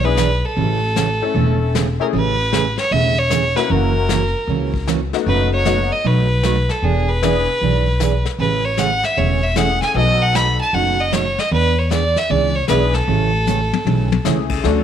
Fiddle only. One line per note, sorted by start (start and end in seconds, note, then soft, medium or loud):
0.05 0.46 B4 medium
0.45 1.75 A4 medium
2.01 2.07 A#4 medium
2.16 2.75 B4 medium
2.79 2.93 C#5 medium
2.92 3.20 E5 loud
3.19 3.58 C#5 loud
3.56 3.72 B4 medium
3.71 4.88 A#4 medium
5.27 5.51 B4 medium
5.53 5.94 C#5 medium
5.92 6.08 D#5 medium
6.07 6.72 B4 medium
6.70 6.85 A4 medium
6.84 7.10 G#4 medium
7.09 8.26 B4 loud
8.40 8.66 B4 medium
8.65 8.80 C#5 medium
8.79 9.06 F#5 medium
9.04 9.19 E5 medium
9.17 9.45 C#5 medium
9.43 9.57 E5 medium
9.56 9.82 F#5 loud
9.82 9.95 G#5 medium
9.96 10.23 D#5 loud
10.22 10.37 F#5 loud
10.35 10.60 B5 medium
10.61 10.75 A5 medium
10.74 11.01 F#5 medium
11.00 11.14 D#5 medium
11.13 11.41 C#5 medium
11.39 11.52 D#5 medium
11.53 11.80 B4 loud
11.78 11.90 C#5 medium
11.91 12.19 D5 medium
12.18 12.31 E5 medium
12.30 12.57 D5 medium
12.55 12.68 C#5 medium
12.68 12.95 B4 medium
12.94 14.25 A4 medium